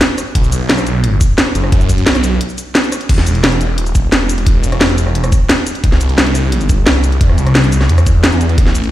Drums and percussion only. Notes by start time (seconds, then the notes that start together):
0.01 snare, closed hi-hat
0.18 cross-stick, closed hi-hat, shaker
0.35 kick, closed hi-hat
0.44 shaker
0.52 closed hi-hat, shaker
0.69 snare, closed hi-hat
0.78 cross-stick, shaker
0.87 closed hi-hat, shaker
1.04 closed hi-hat
1.21 kick, closed hi-hat, shaker
1.38 snare, closed hi-hat
1.47 cross-stick
1.55 closed hi-hat, shaker
1.64 cross-stick
1.72 kick, closed hi-hat
1.81 shaker
1.89 kick, closed hi-hat, shaker
1.98 closed hi-hat
2.07 snare, closed hi-hat
2.15 cross-stick, closed hi-hat, shaker
2.24 closed hi-hat, shaker
2.41 closed hi-hat
2.49 shaker
2.58 closed hi-hat, shaker
2.75 snare, closed hi-hat
2.84 shaker
2.92 cross-stick, closed hi-hat, shaker
3.01 closed hi-hat
3.09 kick, closed hi-hat, crash
3.18 snare
3.27 closed hi-hat, shaker
3.35 closed hi-hat
3.44 snare, closed hi-hat
3.52 closed hi-hat
3.61 closed hi-hat, shaker
3.78 closed hi-hat
3.86 closed hi-hat, shaker
3.95 kick, closed hi-hat, shaker
4.12 snare, closed hi-hat
4.29 closed hi-hat, shaker
4.38 closed hi-hat
4.46 kick, closed hi-hat
4.64 closed hi-hat, shaker
4.72 cross-stick, closed hi-hat
4.81 snare, closed hi-hat
4.89 closed hi-hat
4.98 closed hi-hat, shaker
5.07 cross-stick
5.15 closed hi-hat
5.24 cross-stick, closed hi-hat, shaker
5.32 kick, closed hi-hat, shaker
5.49 snare, closed hi-hat
5.67 closed hi-hat, shaker
5.75 closed hi-hat
5.84 kick, closed hi-hat
5.92 snare
6.01 closed hi-hat, shaker
6.09 closed hi-hat
6.18 snare, closed hi-hat
6.27 closed hi-hat
6.35 closed hi-hat, shaker
6.52 closed hi-hat
6.61 closed hi-hat, shaker
6.69 kick, closed hi-hat, shaker
6.87 snare, closed hi-hat
7.04 closed hi-hat, shaker
7.12 closed hi-hat
7.21 kick, closed hi-hat
7.29 cross-stick
7.38 closed hi-hat, shaker
7.47 cross-stick, closed hi-hat
7.55 snare, closed hi-hat
7.64 closed hi-hat, shaker
7.72 closed hi-hat, shaker
7.81 cross-stick, snare
7.89 closed hi-hat
7.98 cross-stick, closed hi-hat, shaker
8.07 kick, closed hi-hat, shaker
8.24 snare, closed hi-hat
8.32 shaker
8.41 closed hi-hat, shaker
8.49 closed hi-hat
8.58 kick, closed hi-hat
8.67 snare
8.75 closed hi-hat, shaker
8.84 closed hi-hat